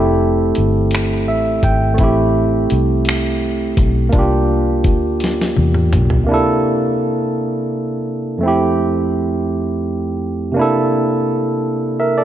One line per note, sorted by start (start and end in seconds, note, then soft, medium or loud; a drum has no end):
0.00 0.52 F1 medium
0.00 1.93 A3 medium
0.00 1.95 C4 medium
0.00 1.96 E4 medium
0.00 1.98 G4 medium
0.00 2.01 A4 soft
0.55 1.29 G1 medium
0.55 closed hi-hat medium
0.91 finger snap loud
0.91 closed hi-hat medium
1.28 1.61 A1 medium
1.28 1.61 E5 medium
1.63 1.96 G#1 medium
1.63 1.97 G5 medium
1.63 kick medium
1.63 closed hi-hat medium
1.94 4.07 A3 medium
1.94 4.08 C4 medium
1.94 closed hi-hat medium
1.99 2.67 A1 medium
1.99 4.10 E4 medium
1.99 kick medium
2.04 4.12 G4 medium
2.70 3.74 C2 medium
2.70 closed hi-hat medium
3.05 finger snap loud
3.05 closed hi-hat medium
3.77 4.10 B1 medium
3.77 kick medium
3.77 closed hi-hat medium
4.09 6.21 A#3 medium
4.09 6.23 D4 medium
4.09 closed hi-hat medium
4.13 4.85 C2 medium
4.13 6.25 F4 medium
4.13 kick loud
4.19 6.26 G4 medium
4.84 5.52 D2 medium
4.84 kick medium
4.84 closed hi-hat medium
5.20 snare medium
5.20 closed hi-hat medium
5.42 snare soft
5.57 5.95 E2 loud
5.57 high tom medium
5.74 mid tom medium
5.93 6.25 B1 medium
5.93 closed hi-hat medium
5.93 mid tom medium
6.10 floor tom medium
6.24 8.36 C3 medium
6.24 8.37 A#3 medium
6.29 8.38 D4 medium
6.29 8.40 E4 medium
6.34 8.41 A4 medium
8.38 10.50 F2 medium
8.38 10.52 A3 medium
8.43 10.53 C4 medium
8.43 10.54 E4 medium
8.48 10.55 G4 medium
10.52 12.24 C3 medium
10.52 12.24 A#3 medium
10.57 12.24 D4 medium
10.57 11.98 E4 medium
10.61 11.99 A4 medium
12.00 12.17 A#4 medium
12.00 12.16 E5 medium
12.18 12.24 A4 medium
12.18 12.24 D5 medium